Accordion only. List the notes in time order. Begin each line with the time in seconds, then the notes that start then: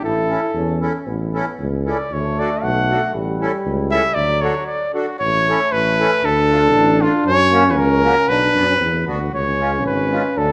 0.29 C#4 E4 A4
0.81 C#4 E4 A4
1.34 C#4 E4 A4
1.86 C#4 E4 A4
2.39 D4 F#4 A4
2.90 D4 F#4 A4
3.41 C#4 E4 A4
3.91 C#4 E4 A4
4.42 D4 F#4 A4
4.94 D4 F#4 A4
5.49 C#4 E4 A4
5.99 C#4 E4 A4
6.51 A3 D4 F4
7.01 A3 D4 F4
7.51 A#3 C#4 F#4
8.03 A#3 C#4 F#4
8.55 B3 D4 F#4
9.07 B3 D4 F#4
9.59 G#3 C#4 F4
10.11 G#3 C#4 F4